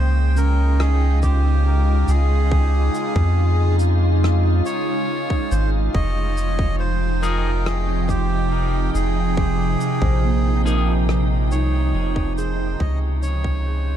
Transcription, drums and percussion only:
0.37 shaker medium
0.80 cross-stick loud
1.23 kick medium
1.23 shaker medium
2.08 shaker medium
2.52 kick loud
2.95 shaker medium
3.16 kick loud
3.80 shaker medium
4.24 cross-stick loud
4.66 shaker medium
5.30 kick loud
5.52 shaker medium
5.95 kick loud
6.38 shaker medium
6.59 kick loud
7.23 shaker medium
7.66 cross-stick loud
8.09 kick medium
8.09 shaker medium
8.95 shaker medium
9.37 kick loud
9.81 shaker medium
10.02 kick loud
10.67 shaker medium
11.09 cross-stick medium
11.52 shaker medium
12.16 kick loud
12.38 shaker medium
12.80 kick loud
13.23 shaker medium
13.44 kick loud

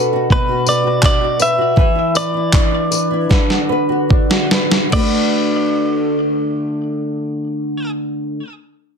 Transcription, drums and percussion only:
0.30 kick loud
0.67 tambourine medium
1.03 kick loud
1.03 clap loud
1.40 tambourine medium
1.77 kick loud
2.15 tambourine medium
2.53 kick loud
2.53 clap loud
2.92 tambourine medium
3.31 kick loud
3.31 snare medium
3.50 snare medium
4.10 kick loud
4.31 snare medium
4.51 snare loud
4.71 snare loud
4.92 kick loud
4.92 crash medium

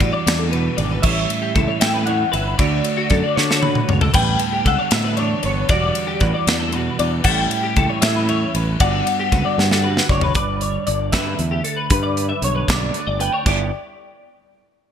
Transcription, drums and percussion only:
0.00 kick medium
0.00 ride medium
0.27 snare loud
0.27 ride loud
0.53 ride medium
0.78 ride medium
1.03 kick loud
1.03 crash loud
1.30 ride medium
1.55 kick medium
1.55 ride medium
1.81 snare loud
1.81 ride medium
2.07 ride medium
2.33 ride medium
2.59 kick loud
2.59 ride loud
2.84 ride medium
3.10 kick medium
3.10 ride medium
3.37 snare medium
3.51 snare medium
3.63 high tom medium
3.75 mid tom medium
3.89 mid tom loud
4.01 floor tom loud
4.13 kick loud
4.13 crash loud
4.39 ride medium
4.66 kick medium
4.66 ride medium
4.91 snare loud
4.91 ride loud
5.17 ride medium
5.43 ride medium
5.69 kick loud
5.69 ride medium
5.95 ride medium
6.20 kick medium
6.20 ride medium
6.47 snare loud
6.47 ride medium
6.72 ride medium
6.99 ride medium
7.24 kick loud
7.24 crash loud
7.51 ride medium
7.76 kick medium
7.76 ride medium
8.02 snare loud
8.02 ride loud
8.29 ride medium
8.55 ride medium
8.80 kick loud
8.80 ride loud
9.07 ride medium
9.32 kick medium
9.32 ride medium
9.59 snare medium
9.71 snare medium
9.97 snare medium
10.09 kick medium
10.21 floor tom medium
10.35 kick loud
10.35 closed hi-hat medium
10.61 closed hi-hat medium
10.87 closed hi-hat medium
11.12 kick medium
11.12 snare loud
11.12 closed hi-hat medium
11.39 closed hi-hat medium
11.65 closed hi-hat medium
11.90 kick loud
11.90 closed hi-hat loud
12.17 closed hi-hat medium
12.42 closed hi-hat medium
12.68 kick medium
12.68 snare loud
12.68 closed hi-hat loud
12.94 closed hi-hat medium
13.20 closed hi-hat medium
13.46 kick loud
13.46 crash medium

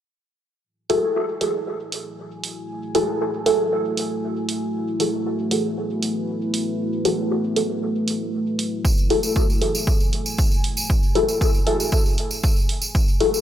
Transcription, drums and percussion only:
0.90 open hi-hat medium
1.41 open hi-hat medium
1.92 open hi-hat medium
2.44 open hi-hat medium
2.95 open hi-hat medium
3.46 open hi-hat medium
3.97 open hi-hat medium
4.49 open hi-hat medium
5.00 open hi-hat medium
5.51 open hi-hat medium
6.03 open hi-hat medium
6.54 open hi-hat medium
7.05 open hi-hat medium
7.56 open hi-hat medium
8.08 open hi-hat medium
8.59 open hi-hat medium
8.85 kick loud
8.85 tambourine medium
8.98 tambourine soft
9.10 open hi-hat medium
9.23 tambourine medium
9.36 kick loud
9.36 tambourine medium
9.50 tambourine soft
9.62 open hi-hat medium
9.75 tambourine medium
9.87 kick loud
9.87 tambourine medium
10.00 tambourine soft
10.13 open hi-hat medium
10.26 tambourine medium
10.38 kick loud
10.38 tambourine medium
10.52 tambourine soft
10.64 open hi-hat medium
10.77 tambourine medium
10.90 kick loud
11.03 tambourine soft
11.15 open hi-hat medium
11.28 tambourine medium
11.41 kick loud
11.41 tambourine medium
11.54 tambourine soft
11.67 open hi-hat medium
11.80 tambourine medium
11.92 kick loud
11.92 tambourine medium
12.06 tambourine soft
12.18 open hi-hat medium
12.31 tambourine medium
12.43 kick loud
12.43 tambourine medium
12.56 tambourine soft
12.69 open hi-hat medium
12.82 tambourine medium
12.95 kick loud
12.95 tambourine medium
13.08 tambourine soft
13.20 open hi-hat medium
13.34 tambourine medium

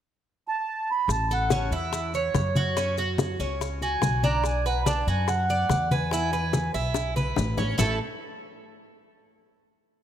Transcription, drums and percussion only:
1.09 high bongo medium
1.09 high conga soft
1.09 maracas medium
1.30 high conga soft
1.30 maracas soft
1.50 high bongo medium
1.50 high conga medium
1.50 maracas medium
1.72 high conga soft
1.72 maracas soft
1.93 high bongo medium
1.93 high conga soft
1.93 maracas medium
2.14 high conga soft
2.14 maracas soft
2.35 high bongo medium
2.35 low bongo medium
2.35 high conga medium
2.35 maracas medium
2.55 high conga medium
2.55 maracas soft
2.76 high bongo medium
2.76 high conga soft
2.76 maracas medium
2.98 high bongo soft
2.98 high conga soft
2.98 maracas soft
3.18 high bongo medium
3.18 high conga medium
3.18 maracas medium
3.40 high bongo soft
3.40 high conga soft
3.40 maracas soft
3.60 high bongo medium
3.60 high conga soft
3.60 maracas medium
3.81 high bongo soft
3.81 high conga soft
3.81 maracas soft
4.02 high bongo medium
4.02 low bongo medium
4.02 high conga medium
4.02 maracas medium
4.23 high conga medium
4.23 maracas soft
4.44 high bongo medium
4.44 high conga soft
4.44 maracas medium
4.65 high conga soft
4.65 maracas soft
4.86 high bongo medium
4.86 high conga medium
4.86 maracas medium
5.08 high conga soft
5.08 maracas soft
5.28 high bongo medium
5.28 high conga soft
5.28 maracas medium
5.50 high conga soft
5.50 maracas soft
5.70 high bongo medium
5.70 low bongo medium
5.70 high conga medium
5.70 maracas medium
5.91 high conga medium
5.91 maracas soft
6.11 high bongo medium
6.11 high conga soft
6.11 maracas medium
6.33 high bongo soft
6.33 high conga soft
6.33 maracas soft
6.53 high bongo medium
6.53 high conga medium
6.53 maracas medium
6.74 high bongo soft
6.74 high conga soft
6.74 maracas soft
6.94 high bongo medium
6.94 high conga soft
6.94 maracas medium
7.17 high conga medium
7.17 maracas soft
7.36 low bongo medium
7.36 low conga medium
7.36 maracas medium
7.57 low bongo medium
7.57 low conga medium
7.57 maracas soft
7.79 low bongo medium
7.79 low conga medium
7.79 maracas medium

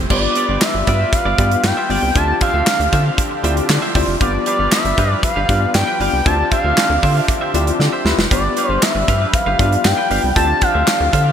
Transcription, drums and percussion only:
0.10 kick loud
0.10 crash loud
0.35 closed hi-hat medium
0.61 snare loud
0.61 clap loud
0.61 closed hi-hat medium
0.87 kick medium
0.87 closed hi-hat medium
1.13 kick loud
1.13 closed hi-hat loud
1.38 kick loud
1.38 closed hi-hat medium
1.51 closed hi-hat medium
1.64 snare loud
1.64 clap medium
1.64 closed hi-hat loud
1.90 open hi-hat medium
2.15 kick loud
2.15 closed hi-hat loud
2.41 kick loud
2.41 closed hi-hat medium
2.67 snare loud
2.67 clap loud
2.67 closed hi-hat medium
2.80 closed hi-hat medium
2.93 kick medium
2.93 closed hi-hat medium
3.18 kick loud
3.18 closed hi-hat medium
3.44 closed hi-hat medium
3.57 closed hi-hat medium
3.69 snare loud
3.69 clap medium
3.69 closed hi-hat loud
3.95 kick medium
3.95 open hi-hat medium
4.21 kick loud
4.21 closed hi-hat loud
4.46 closed hi-hat medium
4.72 snare loud
4.72 clap loud
4.72 closed hi-hat medium
4.85 closed hi-hat soft
4.98 kick medium
4.98 closed hi-hat medium
5.23 kick loud
5.23 closed hi-hat medium
5.49 kick loud
5.49 closed hi-hat medium
5.74 snare loud
5.74 clap medium
5.74 closed hi-hat loud
6.01 open hi-hat medium
6.26 kick loud
6.26 closed hi-hat loud
6.51 kick medium
6.51 closed hi-hat medium
6.78 snare loud
6.78 clap loud
6.78 closed hi-hat medium
7.03 kick medium
7.03 open hi-hat medium
7.28 kick loud
7.28 closed hi-hat medium
7.54 closed hi-hat medium
7.67 closed hi-hat medium
7.80 snare medium
8.06 snare medium
8.19 snare loud
8.31 kick loud
8.31 closed hi-hat loud
8.57 closed hi-hat medium
8.83 snare loud
8.83 clap loud
8.83 closed hi-hat medium
9.08 kick medium
9.08 closed hi-hat medium
9.34 kick loud
9.34 closed hi-hat medium
9.59 kick loud
9.59 closed hi-hat medium
9.72 closed hi-hat medium
9.85 snare loud
9.85 clap medium
9.85 closed hi-hat loud
10.11 open hi-hat medium
10.36 kick loud
10.36 closed hi-hat medium
10.61 kick medium
10.61 closed hi-hat medium
10.87 snare loud
10.87 clap loud
10.87 closed hi-hat medium
11.13 kick medium
11.13 closed hi-hat medium

